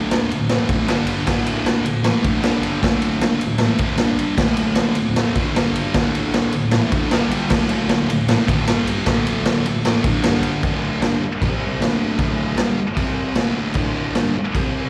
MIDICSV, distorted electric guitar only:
0, 0, Header, 1, 3, 480
1, 0, Start_track
1, 0, Tempo, 390625
1, 1573, Time_signature, 4, 2, 24, 8
1, 18302, End_track
2, 0, Start_track
2, 0, Title_t, "Distorted electric guitar"
2, 0, Program_c, 0, 30
2, 0, Note_on_c, 0, 38, 99
2, 0, Note_on_c, 0, 45, 93
2, 0, Note_on_c, 0, 50, 103
2, 364, Note_off_c, 0, 38, 0
2, 369, Note_off_c, 0, 45, 0
2, 375, Note_off_c, 0, 50, 0
2, 392, Note_on_c, 0, 38, 63
2, 392, Note_on_c, 0, 45, 69
2, 573, Note_off_c, 0, 45, 0
2, 574, Note_off_c, 0, 38, 0
2, 614, Note_on_c, 0, 45, 83
2, 620, Note_on_c, 0, 52, 92
2, 629, Note_on_c, 0, 57, 91
2, 832, Note_off_c, 0, 45, 0
2, 837, Note_on_c, 0, 38, 98
2, 844, Note_off_c, 0, 52, 0
2, 846, Note_off_c, 0, 57, 0
2, 848, Note_on_c, 0, 45, 100
2, 851, Note_on_c, 0, 50, 100
2, 1083, Note_off_c, 0, 38, 0
2, 1083, Note_on_c, 0, 43, 91
2, 1093, Note_off_c, 0, 45, 0
2, 1093, Note_off_c, 0, 50, 0
2, 1093, Note_on_c, 0, 50, 96
2, 1103, Note_on_c, 0, 55, 96
2, 1554, Note_off_c, 0, 43, 0
2, 1558, Note_on_c, 0, 38, 96
2, 1559, Note_off_c, 0, 50, 0
2, 1567, Note_on_c, 0, 45, 102
2, 1569, Note_off_c, 0, 55, 0
2, 1573, Note_on_c, 0, 50, 109
2, 2253, Note_off_c, 0, 38, 0
2, 2256, Note_off_c, 0, 45, 0
2, 2268, Note_on_c, 0, 38, 76
2, 2270, Note_on_c, 0, 45, 74
2, 2287, Note_off_c, 0, 50, 0
2, 2473, Note_off_c, 0, 38, 0
2, 2474, Note_off_c, 0, 45, 0
2, 2501, Note_on_c, 0, 45, 91
2, 2511, Note_on_c, 0, 52, 91
2, 2516, Note_on_c, 0, 57, 92
2, 2737, Note_off_c, 0, 45, 0
2, 2746, Note_on_c, 0, 38, 104
2, 2747, Note_off_c, 0, 52, 0
2, 2752, Note_on_c, 0, 45, 91
2, 2758, Note_off_c, 0, 57, 0
2, 2762, Note_on_c, 0, 50, 105
2, 2970, Note_off_c, 0, 38, 0
2, 2970, Note_on_c, 0, 43, 89
2, 2973, Note_off_c, 0, 45, 0
2, 2973, Note_off_c, 0, 50, 0
2, 2973, Note_on_c, 0, 50, 98
2, 2990, Note_on_c, 0, 55, 102
2, 3461, Note_off_c, 0, 43, 0
2, 3462, Note_off_c, 0, 50, 0
2, 3466, Note_on_c, 0, 38, 90
2, 3472, Note_off_c, 0, 55, 0
2, 3472, Note_on_c, 0, 45, 103
2, 3477, Note_on_c, 0, 50, 94
2, 4162, Note_off_c, 0, 45, 0
2, 4163, Note_off_c, 0, 38, 0
2, 4177, Note_on_c, 0, 45, 72
2, 4178, Note_on_c, 0, 38, 67
2, 4198, Note_off_c, 0, 50, 0
2, 4387, Note_off_c, 0, 45, 0
2, 4388, Note_off_c, 0, 38, 0
2, 4415, Note_on_c, 0, 45, 80
2, 4424, Note_on_c, 0, 52, 90
2, 4438, Note_on_c, 0, 57, 85
2, 4649, Note_off_c, 0, 45, 0
2, 4654, Note_on_c, 0, 38, 85
2, 4660, Note_off_c, 0, 52, 0
2, 4665, Note_on_c, 0, 45, 96
2, 4667, Note_off_c, 0, 57, 0
2, 4672, Note_on_c, 0, 50, 97
2, 4897, Note_off_c, 0, 38, 0
2, 4899, Note_off_c, 0, 50, 0
2, 4902, Note_on_c, 0, 43, 87
2, 4909, Note_off_c, 0, 45, 0
2, 4914, Note_on_c, 0, 50, 104
2, 4927, Note_on_c, 0, 55, 99
2, 5370, Note_off_c, 0, 50, 0
2, 5373, Note_off_c, 0, 43, 0
2, 5378, Note_on_c, 0, 38, 92
2, 5378, Note_on_c, 0, 45, 95
2, 5380, Note_off_c, 0, 55, 0
2, 5385, Note_on_c, 0, 50, 96
2, 6083, Note_off_c, 0, 45, 0
2, 6084, Note_off_c, 0, 38, 0
2, 6098, Note_on_c, 0, 45, 74
2, 6099, Note_on_c, 0, 38, 63
2, 6111, Note_off_c, 0, 50, 0
2, 6306, Note_off_c, 0, 45, 0
2, 6307, Note_off_c, 0, 38, 0
2, 6346, Note_on_c, 0, 45, 89
2, 6355, Note_on_c, 0, 52, 92
2, 6366, Note_on_c, 0, 57, 101
2, 6571, Note_off_c, 0, 45, 0
2, 6577, Note_on_c, 0, 38, 103
2, 6581, Note_off_c, 0, 52, 0
2, 6586, Note_on_c, 0, 45, 95
2, 6596, Note_off_c, 0, 57, 0
2, 6601, Note_on_c, 0, 50, 110
2, 6826, Note_off_c, 0, 38, 0
2, 6830, Note_off_c, 0, 45, 0
2, 6833, Note_off_c, 0, 50, 0
2, 6833, Note_on_c, 0, 43, 87
2, 6848, Note_on_c, 0, 50, 102
2, 6855, Note_on_c, 0, 55, 104
2, 7309, Note_off_c, 0, 43, 0
2, 7314, Note_on_c, 0, 38, 97
2, 7321, Note_off_c, 0, 50, 0
2, 7324, Note_off_c, 0, 55, 0
2, 7331, Note_on_c, 0, 45, 105
2, 7336, Note_on_c, 0, 50, 113
2, 8024, Note_off_c, 0, 38, 0
2, 8031, Note_off_c, 0, 45, 0
2, 8039, Note_on_c, 0, 38, 69
2, 8043, Note_off_c, 0, 50, 0
2, 8046, Note_on_c, 0, 45, 76
2, 8234, Note_off_c, 0, 38, 0
2, 8238, Note_off_c, 0, 45, 0
2, 8272, Note_on_c, 0, 45, 86
2, 8284, Note_on_c, 0, 52, 86
2, 8290, Note_on_c, 0, 57, 85
2, 8505, Note_off_c, 0, 45, 0
2, 8510, Note_on_c, 0, 38, 97
2, 8516, Note_off_c, 0, 52, 0
2, 8520, Note_off_c, 0, 57, 0
2, 8521, Note_on_c, 0, 45, 104
2, 8528, Note_on_c, 0, 50, 111
2, 8756, Note_off_c, 0, 38, 0
2, 8756, Note_on_c, 0, 43, 87
2, 8764, Note_off_c, 0, 45, 0
2, 8764, Note_off_c, 0, 50, 0
2, 8764, Note_on_c, 0, 50, 94
2, 8768, Note_on_c, 0, 55, 99
2, 9231, Note_off_c, 0, 43, 0
2, 9235, Note_off_c, 0, 50, 0
2, 9237, Note_off_c, 0, 55, 0
2, 9240, Note_on_c, 0, 38, 94
2, 9252, Note_on_c, 0, 45, 102
2, 9259, Note_on_c, 0, 50, 95
2, 9932, Note_off_c, 0, 38, 0
2, 9935, Note_off_c, 0, 45, 0
2, 9946, Note_on_c, 0, 38, 66
2, 9950, Note_on_c, 0, 45, 73
2, 9961, Note_off_c, 0, 50, 0
2, 10145, Note_off_c, 0, 38, 0
2, 10146, Note_off_c, 0, 45, 0
2, 10176, Note_on_c, 0, 45, 88
2, 10187, Note_on_c, 0, 52, 92
2, 10200, Note_on_c, 0, 57, 99
2, 10411, Note_off_c, 0, 45, 0
2, 10420, Note_off_c, 0, 52, 0
2, 10424, Note_on_c, 0, 38, 107
2, 10425, Note_on_c, 0, 45, 110
2, 10432, Note_off_c, 0, 57, 0
2, 10446, Note_on_c, 0, 50, 104
2, 10657, Note_off_c, 0, 38, 0
2, 10662, Note_on_c, 0, 43, 92
2, 10663, Note_off_c, 0, 50, 0
2, 10664, Note_off_c, 0, 45, 0
2, 10677, Note_on_c, 0, 55, 116
2, 10678, Note_on_c, 0, 50, 93
2, 11139, Note_off_c, 0, 43, 0
2, 11139, Note_off_c, 0, 50, 0
2, 11144, Note_on_c, 0, 38, 98
2, 11149, Note_off_c, 0, 55, 0
2, 11151, Note_on_c, 0, 45, 101
2, 11154, Note_on_c, 0, 50, 102
2, 11856, Note_off_c, 0, 38, 0
2, 11856, Note_off_c, 0, 45, 0
2, 11867, Note_off_c, 0, 50, 0
2, 11870, Note_on_c, 0, 38, 70
2, 11870, Note_on_c, 0, 45, 73
2, 12064, Note_off_c, 0, 38, 0
2, 12064, Note_off_c, 0, 45, 0
2, 12102, Note_on_c, 0, 45, 95
2, 12119, Note_on_c, 0, 52, 99
2, 12122, Note_on_c, 0, 57, 100
2, 12341, Note_off_c, 0, 45, 0
2, 12349, Note_off_c, 0, 52, 0
2, 12351, Note_off_c, 0, 57, 0
2, 12356, Note_on_c, 0, 38, 98
2, 12367, Note_on_c, 0, 50, 100
2, 12369, Note_on_c, 0, 45, 98
2, 12587, Note_off_c, 0, 38, 0
2, 12592, Note_on_c, 0, 43, 89
2, 12593, Note_off_c, 0, 50, 0
2, 12594, Note_off_c, 0, 45, 0
2, 12610, Note_on_c, 0, 50, 102
2, 12621, Note_on_c, 0, 55, 100
2, 13066, Note_off_c, 0, 43, 0
2, 13071, Note_on_c, 0, 38, 81
2, 13075, Note_off_c, 0, 50, 0
2, 13080, Note_off_c, 0, 55, 0
2, 13091, Note_on_c, 0, 45, 92
2, 13093, Note_on_c, 0, 50, 98
2, 13529, Note_off_c, 0, 50, 0
2, 13539, Note_off_c, 0, 45, 0
2, 13540, Note_off_c, 0, 38, 0
2, 13544, Note_on_c, 0, 50, 97
2, 13545, Note_on_c, 0, 43, 80
2, 13558, Note_on_c, 0, 55, 103
2, 13782, Note_off_c, 0, 43, 0
2, 13782, Note_off_c, 0, 50, 0
2, 13789, Note_off_c, 0, 55, 0
2, 14037, Note_on_c, 0, 48, 80
2, 14056, Note_on_c, 0, 55, 92
2, 14060, Note_on_c, 0, 60, 93
2, 14501, Note_off_c, 0, 48, 0
2, 14506, Note_on_c, 0, 38, 93
2, 14511, Note_off_c, 0, 55, 0
2, 14516, Note_on_c, 0, 45, 93
2, 14521, Note_off_c, 0, 60, 0
2, 14527, Note_on_c, 0, 50, 110
2, 14967, Note_off_c, 0, 38, 0
2, 14967, Note_off_c, 0, 45, 0
2, 14982, Note_on_c, 0, 38, 100
2, 14982, Note_on_c, 0, 45, 93
2, 14984, Note_off_c, 0, 50, 0
2, 14999, Note_on_c, 0, 50, 108
2, 15457, Note_off_c, 0, 50, 0
2, 15462, Note_off_c, 0, 38, 0
2, 15463, Note_off_c, 0, 45, 0
2, 15467, Note_on_c, 0, 43, 88
2, 15472, Note_on_c, 0, 50, 92
2, 15485, Note_on_c, 0, 55, 95
2, 15705, Note_off_c, 0, 43, 0
2, 15708, Note_off_c, 0, 50, 0
2, 15715, Note_off_c, 0, 55, 0
2, 15943, Note_on_c, 0, 48, 90
2, 15955, Note_on_c, 0, 55, 85
2, 15956, Note_on_c, 0, 60, 99
2, 16424, Note_off_c, 0, 48, 0
2, 16429, Note_off_c, 0, 55, 0
2, 16429, Note_on_c, 0, 38, 93
2, 16431, Note_off_c, 0, 60, 0
2, 16434, Note_on_c, 0, 45, 94
2, 16449, Note_on_c, 0, 50, 104
2, 16899, Note_off_c, 0, 38, 0
2, 16910, Note_off_c, 0, 45, 0
2, 16914, Note_on_c, 0, 38, 93
2, 16918, Note_off_c, 0, 50, 0
2, 16932, Note_on_c, 0, 45, 95
2, 16939, Note_on_c, 0, 50, 99
2, 17391, Note_off_c, 0, 38, 0
2, 17398, Note_off_c, 0, 50, 0
2, 17400, Note_off_c, 0, 45, 0
2, 17401, Note_on_c, 0, 43, 90
2, 17413, Note_on_c, 0, 50, 85
2, 17421, Note_on_c, 0, 55, 96
2, 17635, Note_off_c, 0, 43, 0
2, 17641, Note_off_c, 0, 50, 0
2, 17645, Note_off_c, 0, 55, 0
2, 17885, Note_on_c, 0, 48, 85
2, 17890, Note_on_c, 0, 55, 82
2, 17899, Note_on_c, 0, 60, 93
2, 18302, Note_off_c, 0, 48, 0
2, 18302, Note_off_c, 0, 55, 0
2, 18302, Note_off_c, 0, 60, 0
2, 18302, End_track
3, 0, Start_track
3, 0, Title_t, "Muted distorted electric guitar strokes"
3, 13798, Note_on_c, 9, 29, 58
3, 13921, Note_off_c, 9, 29, 0
3, 15721, Note_on_c, 9, 29, 58
3, 15844, Note_off_c, 9, 29, 0
3, 17674, Note_on_c, 9, 29, 58
3, 17797, Note_off_c, 9, 29, 0
3, 18302, End_track
0, 0, End_of_file